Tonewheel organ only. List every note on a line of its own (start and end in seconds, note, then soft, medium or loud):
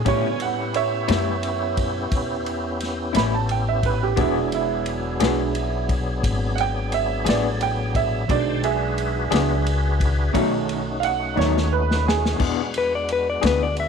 0.05 0.40 D3 medium
0.05 0.39 C#4 medium
0.05 0.40 F4 medium
0.05 0.40 G#5 medium
0.39 4.14 B3 medium
0.39 4.14 C#4 medium
0.39 4.13 E4 medium
0.39 4.14 G4 medium
4.18 8.25 F#3 medium
4.18 8.25 B3 medium
4.18 8.25 D4 medium
4.18 8.25 G#4 medium
8.29 8.63 D#3 medium
8.29 8.63 C5 medium
8.29 8.63 G5 medium
8.29 8.63 A5 medium
8.64 10.33 D4 medium
8.64 10.33 F#4 medium
8.64 10.33 G#4 medium
8.64 10.33 B4 medium
10.34 12.38 A3 medium
10.34 12.38 C#4 medium
10.34 12.37 D#4 medium
10.34 12.38 F#4 medium
12.40 13.88 G#3 medium
12.40 13.88 B3 medium
12.40 13.88 D4 medium
12.40 13.88 F#4 medium